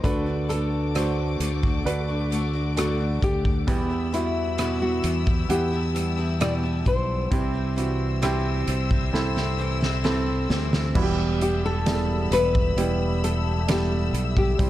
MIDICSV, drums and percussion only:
0, 0, Header, 1, 2, 480
1, 0, Start_track
1, 0, Tempo, 909091
1, 23, Time_signature, 4, 2, 24, 8
1, 7761, End_track
2, 0, Start_track
2, 0, Title_t, "Drums"
2, 22, Note_on_c, 9, 36, 87
2, 25, Note_on_c, 9, 42, 75
2, 75, Note_off_c, 9, 36, 0
2, 78, Note_off_c, 9, 42, 0
2, 265, Note_on_c, 9, 42, 51
2, 317, Note_off_c, 9, 42, 0
2, 503, Note_on_c, 9, 42, 72
2, 507, Note_on_c, 9, 37, 84
2, 556, Note_off_c, 9, 42, 0
2, 559, Note_off_c, 9, 37, 0
2, 742, Note_on_c, 9, 42, 68
2, 794, Note_off_c, 9, 42, 0
2, 863, Note_on_c, 9, 36, 76
2, 915, Note_off_c, 9, 36, 0
2, 985, Note_on_c, 9, 42, 67
2, 1038, Note_off_c, 9, 42, 0
2, 1226, Note_on_c, 9, 42, 46
2, 1278, Note_off_c, 9, 42, 0
2, 1464, Note_on_c, 9, 42, 85
2, 1470, Note_on_c, 9, 37, 96
2, 1517, Note_off_c, 9, 42, 0
2, 1523, Note_off_c, 9, 37, 0
2, 1703, Note_on_c, 9, 36, 85
2, 1705, Note_on_c, 9, 42, 46
2, 1755, Note_off_c, 9, 36, 0
2, 1758, Note_off_c, 9, 42, 0
2, 1822, Note_on_c, 9, 36, 77
2, 1875, Note_off_c, 9, 36, 0
2, 1942, Note_on_c, 9, 36, 93
2, 1942, Note_on_c, 9, 42, 81
2, 1995, Note_off_c, 9, 36, 0
2, 1995, Note_off_c, 9, 42, 0
2, 2184, Note_on_c, 9, 42, 54
2, 2237, Note_off_c, 9, 42, 0
2, 2420, Note_on_c, 9, 42, 73
2, 2424, Note_on_c, 9, 37, 88
2, 2473, Note_off_c, 9, 42, 0
2, 2476, Note_off_c, 9, 37, 0
2, 2660, Note_on_c, 9, 42, 72
2, 2712, Note_off_c, 9, 42, 0
2, 2782, Note_on_c, 9, 36, 81
2, 2835, Note_off_c, 9, 36, 0
2, 2903, Note_on_c, 9, 42, 71
2, 2956, Note_off_c, 9, 42, 0
2, 3146, Note_on_c, 9, 42, 50
2, 3198, Note_off_c, 9, 42, 0
2, 3383, Note_on_c, 9, 42, 82
2, 3390, Note_on_c, 9, 37, 93
2, 3436, Note_off_c, 9, 42, 0
2, 3442, Note_off_c, 9, 37, 0
2, 3623, Note_on_c, 9, 36, 84
2, 3624, Note_on_c, 9, 42, 49
2, 3676, Note_off_c, 9, 36, 0
2, 3677, Note_off_c, 9, 42, 0
2, 3863, Note_on_c, 9, 36, 96
2, 3863, Note_on_c, 9, 42, 83
2, 3916, Note_off_c, 9, 36, 0
2, 3916, Note_off_c, 9, 42, 0
2, 4106, Note_on_c, 9, 42, 54
2, 4158, Note_off_c, 9, 42, 0
2, 4343, Note_on_c, 9, 42, 76
2, 4346, Note_on_c, 9, 37, 93
2, 4396, Note_off_c, 9, 42, 0
2, 4399, Note_off_c, 9, 37, 0
2, 4581, Note_on_c, 9, 42, 71
2, 4634, Note_off_c, 9, 42, 0
2, 4703, Note_on_c, 9, 36, 80
2, 4756, Note_off_c, 9, 36, 0
2, 4827, Note_on_c, 9, 38, 47
2, 4880, Note_off_c, 9, 38, 0
2, 4946, Note_on_c, 9, 38, 41
2, 4999, Note_off_c, 9, 38, 0
2, 5187, Note_on_c, 9, 38, 60
2, 5240, Note_off_c, 9, 38, 0
2, 5306, Note_on_c, 9, 38, 75
2, 5358, Note_off_c, 9, 38, 0
2, 5546, Note_on_c, 9, 38, 88
2, 5598, Note_off_c, 9, 38, 0
2, 5665, Note_on_c, 9, 38, 76
2, 5718, Note_off_c, 9, 38, 0
2, 5783, Note_on_c, 9, 49, 98
2, 5784, Note_on_c, 9, 36, 112
2, 5835, Note_off_c, 9, 49, 0
2, 5836, Note_off_c, 9, 36, 0
2, 6026, Note_on_c, 9, 42, 61
2, 6079, Note_off_c, 9, 42, 0
2, 6264, Note_on_c, 9, 42, 83
2, 6267, Note_on_c, 9, 38, 99
2, 6316, Note_off_c, 9, 42, 0
2, 6320, Note_off_c, 9, 38, 0
2, 6504, Note_on_c, 9, 42, 85
2, 6557, Note_off_c, 9, 42, 0
2, 6626, Note_on_c, 9, 36, 89
2, 6679, Note_off_c, 9, 36, 0
2, 6746, Note_on_c, 9, 42, 76
2, 6799, Note_off_c, 9, 42, 0
2, 6990, Note_on_c, 9, 42, 58
2, 7043, Note_off_c, 9, 42, 0
2, 7226, Note_on_c, 9, 42, 105
2, 7232, Note_on_c, 9, 38, 105
2, 7278, Note_off_c, 9, 42, 0
2, 7285, Note_off_c, 9, 38, 0
2, 7468, Note_on_c, 9, 42, 56
2, 7521, Note_off_c, 9, 42, 0
2, 7585, Note_on_c, 9, 36, 87
2, 7638, Note_off_c, 9, 36, 0
2, 7705, Note_on_c, 9, 36, 110
2, 7706, Note_on_c, 9, 42, 91
2, 7758, Note_off_c, 9, 36, 0
2, 7759, Note_off_c, 9, 42, 0
2, 7761, End_track
0, 0, End_of_file